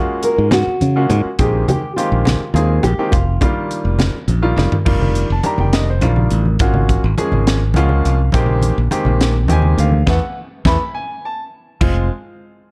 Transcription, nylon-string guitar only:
0.00 0.23 G#4 medium
0.24 0.51 A#4 medium
0.52 1.13 F#4 medium
1.39 1.68 G#4 medium
1.69 1.96 G4 medium
1.96 2.53 F4 medium
2.54 2.82 F4 medium
2.83 3.11 G4 medium
3.11 4.24 F4 medium

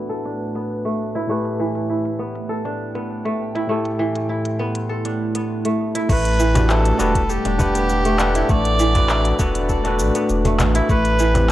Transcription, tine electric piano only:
0.00 1.25 A3 medium
0.00 1.25 D4 medium
0.00 1.26 F#4 medium
0.00 1.26 A4 medium
0.00 1.27 B4 medium
1.27 3.65 A2 medium
1.27 3.66 E4 medium
1.27 3.66 G4 medium
1.27 3.67 B4 medium
3.67 6.05 A2 medium
3.67 6.06 E4 medium
3.67 6.06 G4 medium
3.67 6.07 A4 medium
6.54 6.95 D4 medium
6.54 6.96 F#4 medium
6.54 6.96 G4 medium
6.54 6.96 B4 loud
6.98 7.22 D4 medium
6.98 7.22 F#4 medium
6.98 7.22 G4 medium
6.98 7.23 B4 loud
7.58 8.15 D4 loud
7.58 8.16 G4 medium
7.58 8.16 B4 loud
7.58 8.16 F#5 medium
8.18 8.90 D4 medium
8.18 8.92 A4 medium
8.18 8.92 B4 medium
8.18 8.91 F#5 medium
8.94 9.35 D4 medium
8.94 9.36 F#4 medium
8.94 9.36 A4 medium
8.94 9.36 B4 loud
9.39 9.81 D4 medium
9.39 9.81 F#4 medium
9.39 9.82 A4 medium
9.39 9.82 B4 loud
9.84 10.87 D4 medium
9.84 10.88 F#4 medium
9.84 10.88 A4 medium
9.84 10.89 B4 medium
11.34 11.52 C4 medium
11.34 11.52 E4 medium
11.34 11.52 G4 medium
11.34 11.52 B4 loud

